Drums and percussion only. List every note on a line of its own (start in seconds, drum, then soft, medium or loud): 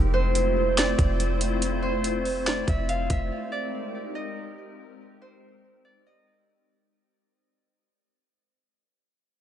0.35 closed hi-hat medium
0.78 snare loud
0.78 closed hi-hat medium
0.99 kick medium
0.99 closed hi-hat medium
1.20 closed hi-hat medium
1.41 closed hi-hat medium
1.62 closed hi-hat medium
2.04 closed hi-hat medium
2.25 open hi-hat soft
2.47 snare loud
2.47 closed hi-hat medium
2.68 kick medium
2.68 closed hi-hat medium
2.89 closed hi-hat medium
3.10 kick loud
3.10 closed hi-hat medium